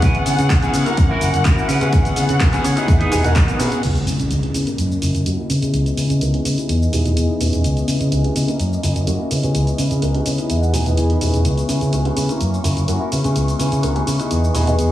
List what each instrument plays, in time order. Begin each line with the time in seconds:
Already playing: grand piano B3 C#4 E4 G#4, violin section F#5
0.01 fingered electric bass C#2, clean electric guitar C#4 E4 B4, kick, closed hi-hat, cabasa
0.15 closed hi-hat
0.25 fingered electric bass C#3, muted clean electric guitar stroke, open hi-hat, cabasa
0.39 fingered electric bass C#3, closed hi-hat, cabasa
0.50 fingered electric bass C#2, grand piano B3 C#4 E4 G#4, kick, clap, closed hi-hat, cabasa
0.62 grand piano B3 C#4 E4 G#4, closed hi-hat, cabasa
0.73 fingered electric bass C#3, muted clean electric guitar stroke, open hi-hat, cabasa
0.85 grand piano A#3 C#4 E4 A#4, muted clean electric guitar stroke, closed hi-hat, cabasa
0.97 fingered electric bass F#2, kick, closed hi-hat, cabasa
1.09 clean electric guitar E4 F#4 A#4
1.21 fingered electric bass F#1, open hi-hat, cabasa
1.34 fingered electric bass F#1, closed hi-hat, cabasa
1.44 fingered electric bass F#2, grand piano A#3 C#4 E4 F#4, clean electric guitar E4 F#4 A#4, kick, clap, closed hi-hat, cabasa
1.58 cabasa
1.68 fingered electric bass C#3, clean electric guitar C#4 E4 B4, open hi-hat, cabasa
1.80 fingered electric bass C#3, grand piano B3 C#4 E4 G#4, closed hi-hat, cabasa
1.93 fingered electric bass C#2, kick, closed hi-hat, cabasa
2.05 closed hi-hat, cabasa
2.16 fingered electric bass C#3, muted clean electric guitar stroke, open hi-hat, cabasa
2.29 fingered electric bass C#3, closed hi-hat, cabasa
2.40 grand piano B3 C#4 E4 A#4, kick, clap, closed hi-hat, cabasa
2.53 grand piano B3 C#4 E4 G#4, clap, closed hi-hat, cabasa
2.63 fingered electric bass C#3, clean electric guitar C#5, muted clean electric guitar stroke, open hi-hat, cabasa
2.76 grand piano B3 D#4 E4 G#4, muted clean electric guitar stroke, closed hi-hat, cabasa
2.87 fingered electric bass E2, clean electric guitar E5, muted clean electric guitar stroke, kick, closed hi-hat, cabasa
3.00 clean electric guitar D#4 E4 G#4, closed hi-hat
3.11 fingered electric bass E1, grand piano B3 D#4 E4 G#4, clean electric guitar G#5, open hi-hat, cabasa
3.24 fingered electric bass E1, grand piano B3 D#4 F#4 A#4, closed hi-hat, cabasa
3.35 fingered electric bass B1, clean electric guitar B3 D#4 A#4 A#5, kick, clap, closed hi-hat, cabasa
3.48 closed hi-hat, cabasa
3.59 fingered electric bass B2, grand piano B3 C#4 E4 G#4, open hi-hat, cabasa
3.72 fingered electric bass B2, closed hi-hat, cabasa
3.83 fingered electric bass C#2, violin section D#5, closed hi-hat, crash, impact, cabasa
3.96 closed hi-hat, cabasa
4.06 fingered electric bass C#3, clean electric guitar C#4 E4 B4, open hi-hat, cabasa
4.19 fingered electric bass C#3, closed hi-hat, cabasa
4.30 fingered electric bass C#2, grand piano B3 C#4 E4 G#4, closed hi-hat, cabasa
4.43 grand piano B3 C#4 E4 G#4, closed hi-hat
4.54 fingered electric bass C#3, clean electric guitar C#4 E4 B4, open hi-hat, cabasa
4.66 grand piano A#3 C#4 E4 A#4, closed hi-hat, cabasa
4.78 fingered electric bass F#2, closed hi-hat, cabasa
4.92 cabasa
5.01 fingered electric bass F#1, clean electric guitar E4 F#4 A#4, open hi-hat, cabasa
5.15 fingered electric bass F#1, closed hi-hat, cabasa
5.25 fingered electric bass F#2, grand piano A#3 C#4 E4 F#4, closed hi-hat, cabasa
5.37 clean electric guitar E4 F#4 A#4
5.49 fingered electric bass C#3, clean electric guitar C#4 E4 B4, open hi-hat, cabasa
5.61 fingered electric bass C#3, grand piano B3 C#4 E4 G#4, closed hi-hat, cabasa
5.73 fingered electric bass C#2, closed hi-hat, cabasa
5.86 closed hi-hat, cabasa
5.97 fingered electric bass C#3, clean electric guitar C#4 E4 B4, open hi-hat, cabasa
6.10 fingered electric bass C#3, closed hi-hat, cabasa
6.21 fingered electric bass C#2, grand piano B3 C#4 E4 A#4, closed hi-hat, cabasa
6.33 grand piano B3 C#4 E4 G#4, closed hi-hat
6.45 fingered electric bass C#3, clean electric guitar C#4 E4 B4, open hi-hat, cabasa
6.57 grand piano B3 D#4 E4 G#4, closed hi-hat, cabasa
6.69 fingered electric bass E2, closed hi-hat, cabasa
6.82 cabasa
6.92 fingered electric bass E1, grand piano B3 D#4 E4 G#4, clean electric guitar D#4 E4 G#4, open hi-hat, cabasa
7.05 fingered electric bass E1, grand piano E3 B3 G#4 D#5, closed hi-hat, cabasa
7.17 fingered electric bass E2, closed hi-hat, cabasa
7.29 clean electric guitar D#4 E4 G#4
7.40 fingered electric bass E1, grand piano B3 C#4 E4 G#4, open hi-hat, cabasa
7.53 fingered electric bass E1, closed hi-hat, cabasa
7.64 fingered electric bass C#2, closed hi-hat, cabasa
7.77 closed hi-hat, cabasa
7.87 fingered electric bass C#3, clean electric guitar C#4 E4 B4, open hi-hat, cabasa
8.00 fingered electric bass C#3, closed hi-hat, cabasa
8.11 fingered electric bass C#2, grand piano B3 C#4 E4 G#4, closed hi-hat, cabasa
8.24 grand piano B3 C#4 E4 G#4, closed hi-hat
8.35 fingered electric bass C#3, clean electric guitar C#4 E4 B4, open hi-hat, cabasa
8.47 grand piano A#3 C#4 E4 A#4, closed hi-hat, cabasa
8.60 fingered electric bass F#2, closed hi-hat, cabasa
8.73 cabasa
8.83 fingered electric bass F#1, clean electric guitar E4 F#4 A#4, open hi-hat, cabasa
8.96 fingered electric bass F#1, closed hi-hat, cabasa
9.07 fingered electric bass F#2, grand piano A#3 C#4 E4 F#4, closed hi-hat, cabasa
9.19 clean electric guitar E4 F#4 A#4
9.30 fingered electric bass C#3, clean electric guitar C#4 E4 B4, open hi-hat, cabasa
9.43 fingered electric bass C#3, grand piano B3 C#4 E4 G#4, closed hi-hat, cabasa
9.55 fingered electric bass C#2, closed hi-hat, cabasa
9.67 closed hi-hat, cabasa
9.78 fingered electric bass C#3, clean electric guitar C#4 E4 B4, open hi-hat, cabasa
9.91 fingered electric bass C#3, closed hi-hat, cabasa
10.02 fingered electric bass C#2, grand piano B3 C#4 E4 A#4, closed hi-hat, cabasa
10.14 grand piano B3 C#4 E4 G#4, closed hi-hat
10.25 fingered electric bass C#3, clean electric guitar C#4 E4 B4 C#5, open hi-hat, cabasa
10.38 grand piano B3 D#4 E4 G#4, closed hi-hat, cabasa
10.50 fingered electric bass E2, clean electric guitar E5, closed hi-hat, cabasa
10.62 clean electric guitar F#5, cabasa
10.73 fingered electric bass E1, grand piano B3 D#4 E4 G#4, clean electric guitar D#4 E4 G#4, open hi-hat, cabasa
10.86 fingered electric bass E1, grand piano E3 B3 G#4, closed hi-hat, cabasa
10.97 fingered electric bass E2, clean electric guitar G#5, closed hi-hat, cabasa
11.09 clean electric guitar D#4 E4 G#4, closed hi-hat
11.20 fingered electric bass E1, grand piano B3 C#4 E4 G#4, clean electric guitar G#5, open hi-hat, cabasa
11.34 fingered electric bass E1, closed hi-hat, cabasa
11.45 fingered electric bass C#2, violin section C#6, closed hi-hat, cabasa
11.58 closed hi-hat, cabasa
11.69 fingered electric bass C#3, clean electric guitar C#4 E4 B4, open hi-hat, cabasa
11.81 fingered electric bass C#3, closed hi-hat, cabasa
11.92 fingered electric bass C#2, grand piano B3 C#4 E4 G#4, closed hi-hat, cabasa
12.05 grand piano B3 C#4 E4 G#4, closed hi-hat
12.16 fingered electric bass C#3, clean electric guitar C#4 E4 B4, open hi-hat, cabasa
12.28 grand piano A#3 C#4 E4 A#4, closed hi-hat, cabasa
12.41 fingered electric bass F#2, closed hi-hat, cabasa
12.54 cabasa
12.64 fingered electric bass F#1, clean electric guitar E4 F#4 A#4, open hi-hat, cabasa
12.77 fingered electric bass F#1, closed hi-hat, cabasa
12.88 fingered electric bass F#2, grand piano A#3 C#4 E4 F#4, closed hi-hat, cabasa
13.00 clean electric guitar E4 F#4 A#4
13.11 fingered electric bass C#3, clean electric guitar C#4 E4 B4, open hi-hat, cabasa
13.24 fingered electric bass C#3, grand piano B3 C#4 E4 G#4, closed hi-hat, cabasa
13.36 fingered electric bass C#2, closed hi-hat, cabasa
13.48 closed hi-hat, cabasa
13.59 fingered electric bass C#3, clean electric guitar C#4 E4 B4, open hi-hat, cabasa
13.72 fingered electric bass C#3, closed hi-hat, cabasa
13.83 fingered electric bass C#2, grand piano B3 C#4 E4 A#4, closed hi-hat, cabasa
13.95 grand piano B3 C#4 E4 G#4, closed hi-hat
14.06 fingered electric bass C#3, clean electric guitar C#4 E4 B4, open hi-hat, cabasa
14.19 grand piano B3 D#4 E4 G#4, closed hi-hat, cabasa
14.31 fingered electric bass E2, closed hi-hat, cabasa
14.44 cabasa
14.54 fingered electric bass E1, grand piano B3 D#4 E4 G#4, clean electric guitar D#4 E4 G#4, open hi-hat, cabasa
14.67 fingered electric bass E1, grand piano E3 B3 G#4 D#5, closed hi-hat, cabasa
14.79 fingered electric bass E2, closed hi-hat, cabasa